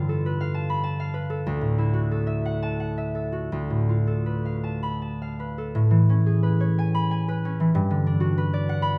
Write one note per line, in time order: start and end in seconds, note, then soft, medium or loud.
0.00 1.48 G2 medium
0.00 1.47 D3 soft
0.00 1.47 F4 soft
0.00 0.25 B4 medium
0.00 0.53 A5 medium
0.00 0.68 B5 medium
0.09 1.29 A4 soft
0.26 1.13 B4 medium
0.41 0.98 F5 medium
0.54 0.82 A5 medium
0.70 1.47 B5 medium
0.83 2.61 A5 medium
1.00 1.48 F5 medium
1.14 1.47 B4 soft
1.30 2.10 A4 soft
1.46 3.51 D2 medium
1.61 3.52 A2 soft
1.78 3.53 E4 soft
1.93 3.31 F#4 soft
2.11 3.14 A4 soft
2.27 2.96 E5 soft
2.45 2.79 F#5 medium
2.62 4.62 A5 medium
2.80 3.53 F#5 soft
2.98 3.53 E5 soft
3.15 4.06 A4 soft
3.32 3.53 F#4 soft
3.52 5.77 D2 medium
3.70 5.74 A2 soft
3.89 5.76 F4 soft
4.07 5.57 A4 soft
4.26 5.38 B4 soft
4.45 5.20 F5 soft
4.64 5.00 A5 soft
4.83 6.93 B5 medium
5.02 7.77 A5 soft
5.22 5.77 F5 soft
5.40 6.42 B4 soft
5.58 7.77 A4 soft
5.75 7.77 A2 medium
5.91 7.59 E3 soft
6.09 7.44 C#4 soft
6.26 7.76 G#4 soft
6.43 7.27 B4 medium
6.60 7.76 C#5 medium
6.78 7.10 G#5 medium
6.95 8.81 B5 medium
7.11 7.76 G#5 medium
7.28 8.36 B4 medium
7.45 7.77 C#4 medium
7.60 7.77 E3 medium
7.75 8.98 G2 medium
7.90 8.98 D3 medium
8.07 8.98 D4 medium
8.20 8.98 F#4 medium
8.38 8.98 B4 medium
8.53 8.98 D5 medium
8.69 8.98 F#5 medium
8.82 8.98 B5 medium